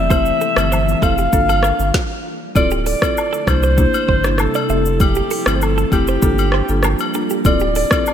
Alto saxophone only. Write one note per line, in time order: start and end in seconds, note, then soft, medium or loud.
0.00 0.99 E5 loud
1.03 2.21 F5 loud
2.56 2.70 D5 loud
2.87 3.49 D5 loud
3.48 4.41 C5 loud
4.40 5.03 A4 loud
5.01 5.57 G4 loud
5.55 5.64 C5 medium
5.62 5.93 A4 medium
5.93 7.11 G4 medium
7.46 7.74 D5 loud
7.77 8.14 D5 loud